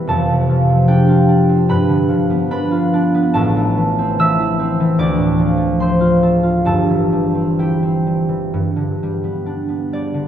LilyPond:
<<
  \new Staff \with { instrumentName = "Harp" } { \time 4/4 \key g \mixolydian \tempo 4 = 71 << { <a'' b'' c'''>4 g''4 b''4 b''4 | a''4 e'''4 d'''4 c'''4 | a''4 g''2~ g''8 d''8 | } \\ { <a' c'' d''>4 g'4 b'4 b'4 | a'4 e''4 d''4 c''4 | a'4 g'2. | } >> }
  \new Staff \with { instrumentName = "Harp" } { \clef bass \time 4/4 \key g \mixolydian <f,, f, c'>16 c16 f16 c'16 d'16 f'16 d'16 c'16 g,16 d16 f16 b16 d'16 f'16 d'16 b16 | <a,, a,>16 a16 e16 c'16 e16 e'16 c'16 e16 d,16 a,16 f16 a16 c'16 f'16 a'16 f'16 | <g,, g,>16 e16 g16 c'16 e'16 c'16 g16 e16 g,16 d16 g16 b16 d'16 b16 g16 d16 | }
>>